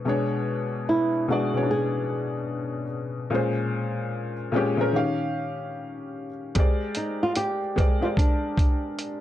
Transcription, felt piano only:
0.05 1.08 B2 medium
0.05 1.09 G#3 medium
0.05 1.10 D4 medium
0.09 1.11 C#5 medium
1.28 1.49 B2 medium
1.28 1.49 G#3 medium
1.28 1.50 D4 medium
1.28 1.51 D5 medium
1.53 2.82 B2 medium
1.53 2.83 G#3 medium
1.53 1.60 C#4 soft
1.53 2.84 C#5 medium
1.62 2.87 D4 medium
3.30 4.33 A#2 medium
3.30 4.34 G#3 medium
3.30 4.34 C#4 medium
3.35 4.35 C5 medium
4.52 4.73 A#2 medium
4.52 4.74 G#3 medium
4.52 4.74 C#4 medium
4.56 4.75 G4 medium
4.77 4.93 A#2 medium
4.77 4.94 G#3 medium
4.77 4.92 C#4 medium
4.77 4.95 A#4 medium
4.92 6.26 D#3 medium
4.92 6.27 C#4 medium
4.92 6.28 G4 medium
4.96 6.28 F5 medium
6.55 7.58 G#3 medium
6.55 7.58 G4 medium
6.55 7.59 A#4 medium
6.55 7.59 C5 medium
6.59 7.60 D5 medium
7.76 7.97 G#3 medium
7.76 7.97 G4 medium
7.76 7.98 A#4 medium
7.76 7.98 C5 medium
7.76 7.99 D5 medium
8.01 9.21 G#3 medium
8.01 9.21 G4 medium
8.01 9.21 A#4 medium
8.01 9.21 C5 medium
8.01 9.21 D5 medium

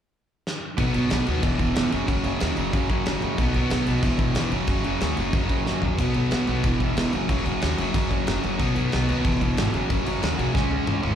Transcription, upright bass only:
0.78 0.88 B1 medium
0.96 1.05 B1 medium
1.11 1.21 B1 medium
1.28 1.38 D#2 medium
1.43 1.53 E1 medium
1.59 1.69 E1 medium
1.76 1.86 E1 medium
1.93 2.03 F#1 loud
2.08 2.18 F#1 medium
2.25 2.35 F#1 medium
2.42 2.51 D#2 medium
2.58 2.68 F#1 medium
2.74 2.93 F#2 loud
3.06 3.16 F#1 medium
3.23 3.32 F#1 medium
3.39 3.48 B1 loud
3.55 3.65 B1 medium
3.72 3.82 B1 loud
3.88 3.98 B1 medium
4.03 4.13 E1 medium
4.19 4.29 E1 medium
4.35 4.45 E1 medium
4.52 4.62 F#1 medium
4.68 4.78 F#1 loud
4.84 4.94 F#1 medium
5.02 5.12 D#2 loud
5.18 5.28 F#1 medium
5.33 5.53 F#2 medium
5.68 5.77 F#1 medium
5.82 5.92 A#1 medium
5.99 6.09 B1 loud
6.15 6.25 B1 medium
6.32 6.42 B1 medium
6.49 6.66 B1 medium
6.64 6.74 E1 medium
6.80 6.90 E1 medium
6.97 7.07 E1 medium
7.14 7.24 F#1 loud
7.29 7.39 F#1 loud
7.46 7.56 F#1 medium
7.63 7.73 D#2 medium
7.79 7.89 F#1 medium
7.95 8.14 F#2 medium
8.27 8.37 F#1 loud
8.45 8.54 F#1 loud
8.60 8.70 B1 medium
8.77 8.87 B1 medium
8.94 9.04 B1 loud
9.10 9.19 D#2 medium
9.25 9.35 E1 medium
9.41 9.51 E1 loud
9.57 9.67 G#1 loud
9.74 9.84 F#1 medium
9.91 10.00 F#1 loud
10.07 10.17 F#1 medium
10.23 10.33 D#2 medium
10.39 10.49 B1 medium
10.55 10.75 C#2 medium
10.89 10.98 C#2 medium
11.04 11.14 G#1 medium

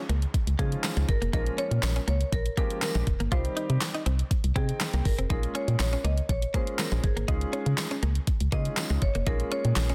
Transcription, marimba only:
0.59 1.10 G#4 loud
1.09 1.33 A#4 loud
1.34 1.59 A#4 loud
1.59 2.07 C#5 loud
2.08 2.33 C#5 loud
2.33 2.57 A#4 loud
2.58 2.81 A#4 medium
2.83 3.33 A#4 loud
3.32 3.78 C5 medium
4.56 5.07 G#4 medium
5.05 5.29 A#4 medium
5.30 5.56 A#4 medium
5.55 5.78 C#5 loud
5.80 6.03 C#5 loud
6.05 6.30 D#5 loud
6.30 6.55 C#5 loud
6.54 6.77 C5 loud
6.79 6.90 A#4 loud
7.04 7.74 G#4 medium
8.53 9.04 D#5 loud
9.02 9.28 C#5 loud
9.27 9.50 A#4 loud
9.52 9.95 C#5 loud

